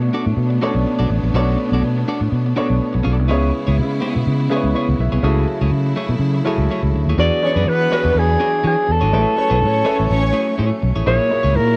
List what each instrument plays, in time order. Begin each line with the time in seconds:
Already playing: grand piano B2 B3 D4 A4 C#5, string section A3 B3 D4
0.02 muted clean electric guitar stroke
0.13 clean electric guitar D4 F#4 A4 D5
0.26 fingered electric bass A2, muted clean electric guitar stroke
0.37 fingered electric bass B2
0.50 muted clean electric guitar stroke
0.61 grand piano B2 B3 C#4 A4 C#5, clean electric guitar D4 F#4 A4 D5
0.68 grand piano D4
0.75 fingered electric bass B1, muted clean electric guitar stroke
0.86 muted clean electric guitar stroke
0.99 fingered electric bass B1, clean electric guitar D4 F#4 A4 D5
1.10 fingered electric bass A1, muted clean electric guitar stroke
1.23 fingered electric bass A#1, muted clean electric guitar stroke
1.34 fingered electric bass B1, grand piano B2 B3 C#4 A4 C#5, clean electric guitar D4 F#4 A4 D5
1.41 grand piano D4
1.60 muted clean electric guitar stroke
1.72 fingered electric bass B1, clean electric guitar D4 F#4 A4 D5
1.82 fingered electric bass B2, muted clean electric guitar stroke
1.98 muted clean electric guitar stroke
2.08 clean electric guitar D4 F#4 A4 D5
2.21 fingered electric bass A2, muted clean electric guitar stroke
2.32 fingered electric bass B2
2.46 muted clean electric guitar stroke
2.56 grand piano B2 B3 D4 A4 C#5, clean electric guitar D4 F#4 A4 D5
2.69 fingered electric bass B1, muted clean electric guitar stroke
2.93 fingered electric bass B1, muted clean electric guitar stroke
3.03 fingered electric bass B1, clean electric guitar D4 F#4 A4 D5
3.17 fingered electric bass C2, muted clean electric guitar stroke
3.28 fingered electric bass C#2, grand piano C#3 B3 E4 G#4 C#5, string section C#3 G#3 B3 E4, clean electric guitar B3 E4 G#4 C#5
3.53 muted clean electric guitar stroke
3.67 fingered electric bass C#2, clean electric guitar B3 E4 G#4 C#5
3.78 fingered electric bass C#3, muted clean electric guitar stroke
3.91 muted clean electric guitar stroke
4.00 clean electric guitar B3 E4 G#4 C#5
4.15 fingered electric bass B2, muted clean electric guitar stroke
4.27 fingered electric bass C#3
4.40 muted clean electric guitar stroke
4.49 grand piano C#3 B3 E4 G#4 B4, clean electric guitar B3 E4 G#4 C#5
4.56 grand piano C#5
4.64 fingered electric bass C#2, muted clean electric guitar stroke
4.75 clean electric guitar B3 E4 G#4 C#5, grand piano G#4 C#5
4.89 fingered electric bass C#2, muted clean electric guitar stroke
4.99 fingered electric bass B1, grand piano B4 E5, muted clean electric guitar stroke
5.12 fingered electric bass C2, clean electric guitar B3 E4 G#4 C#5
5.22 fingered electric bass C#2, grand piano C#3 C#4 E4 F#4 G#4 A4, string section F#3 A3 E4, clean electric guitar A3 E4 G#4 C#5
5.48 muted clean electric guitar stroke
5.61 fingered electric bass C#2, clean electric guitar A3 E4 G#4 C#5
5.71 fingered electric bass C#3, muted clean electric guitar stroke
5.86 muted clean electric guitar stroke
5.96 clean electric guitar A3 E4 G#4 C#5
6.09 fingered electric bass B2, muted clean electric guitar stroke
6.19 fingered electric bass C#3
6.35 muted clean electric guitar stroke
6.44 grand piano C#3 C#4 E4 F#4 G#4 A4, clean electric guitar A3 E4 G#4 C#5
6.58 fingered electric bass C#2, muted clean electric guitar stroke
6.70 clean electric guitar A3 E4 G#4 C#5
6.83 fingered electric bass C#2, muted clean electric guitar stroke
6.94 fingered electric bass D2, muted clean electric guitar stroke
7.07 fingered electric bass D#2, clean electric guitar A3 E4 G#4 C#5
7.17 fingered electric bass E2, string section E3 F#3 D4, grand piano E3 B3 D4 F#4 G#4 C#5, clean electric guitar D4 F#4 G#4 C#5, alto saxophone D5
7.42 grand piano E3 B3 D4 F#4 G#4 C#5, violin section C#4 C#5, muted clean electric guitar stroke
7.49 grand piano D5
7.56 fingered electric bass F#2, violin section B3 B4, clean electric guitar D4 F#4 G#4 C#5
7.66 fingered electric bass E3, violin section B3 B4, alto saxophone B4, muted clean electric guitar stroke
7.81 muted clean electric guitar stroke
7.90 grand piano E3 B3 D4 F#4 G4 C#5, clean electric guitar D4 F#4 G#4 C#5, alto saxophone B4
7.97 grand piano G#4
8.05 fingered electric bass E2, muted clean electric guitar stroke
8.15 fingered electric bass E2
8.19 alto saxophone G#4
8.29 muted clean electric guitar stroke
8.40 clean electric guitar D4 F#4 G#4 C#5
8.53 muted clean electric guitar stroke
8.63 fingered electric bass E3, clean electric guitar D4 F#4 G#4 C#5, alto saxophone G#4
8.76 muted clean electric guitar stroke
8.87 fingered electric bass E2, muted clean electric guitar stroke
8.92 alto saxophone A4
9.01 fingered electric bass G#1, clean electric guitar D4 F#4 G#4 C#5
9.12 fingered electric bass A1, grand piano A3 E4 G#4 B4 C#5, clean electric guitar A3 E4 G#4 C#5, string section A3 C#4
9.36 grand piano A3 E4 A4 B4 C#5, violin section C#4 C#5, muted clean electric guitar stroke
9.50 fingered electric bass B1, clean electric guitar A3 E4 G#4 C#5, violin section B3 B4
9.60 fingered electric bass A2, violin section C#4 C#5, muted clean electric guitar stroke
9.74 muted clean electric guitar stroke
9.84 clean electric guitar A3 E4 G#4 C#5, grand piano A3 E4 A4 B4 C#5
9.99 fingered electric bass A1, muted clean electric guitar stroke
10.08 fingered electric bass A1, violin section C#4 C#5
10.22 muted clean electric guitar stroke
10.33 clean electric guitar A3 E4 G#4 C#5
10.48 muted clean electric guitar stroke
10.58 fingered electric bass A2, clean electric guitar A3 E4 G#4 C#5
10.71 muted clean electric guitar stroke
10.82 fingered electric bass B1, muted clean electric guitar stroke
10.96 fingered electric bass A1, clean electric guitar A3 E4 G#4 C#5
11.05 fingered electric bass A#1, grand piano A#2 A#3 E4 G#4 C#5, string section F#3 A#3 E4, clean electric guitar A#3 E4 G#4 C#5, alto saxophone C#5
11.30 grand piano A#2 A#3 E4 G#4 C#5, muted clean electric guitar stroke
11.43 fingered electric bass C#2, clean electric guitar A#3 E4 G#4 C#5
11.55 fingered electric bass A#2, alto saxophone A#4, muted clean electric guitar stroke
11.68 muted clean electric guitar stroke